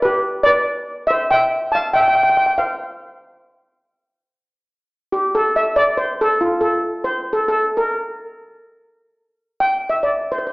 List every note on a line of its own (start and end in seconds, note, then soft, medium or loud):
0.02 0.44 G4 medium
0.02 0.45 B4 medium
0.43 0.86 B4 medium
0.43 0.84 D5 loud
1.07 1.30 C5 medium
1.07 1.31 E5 medium
1.31 1.72 E5 medium
1.31 1.70 G5 loud
1.72 1.84 F5 medium
1.72 1.82 A5 medium
1.93 2.03 E5 medium
1.93 1.99 G5 medium
2.00 2.07 G5 medium
2.08 2.14 G5 medium
2.15 2.22 G5 medium
2.23 2.28 G5 medium
2.30 2.36 G5 medium
2.37 2.45 G5 medium
2.46 2.54 G5 medium
2.58 3.40 C5 medium
2.58 3.39 F5 medium
5.12 5.35 G4 medium
5.35 5.56 A4 medium
5.56 5.66 E5 medium
5.76 5.86 D5 loud
5.97 6.20 C5 medium
6.21 6.40 A4 medium
6.41 6.61 F4 medium
6.61 6.81 A4 medium
7.04 7.34 C5 medium
7.33 7.46 A4 medium
7.48 7.77 A4 medium
7.77 8.79 A#4 medium
9.60 9.86 G5 medium
9.89 10.03 E5 medium
10.03 10.29 D5 medium
10.32 10.37 C5 medium
10.38 10.45 C5 medium
10.47 10.53 C5 medium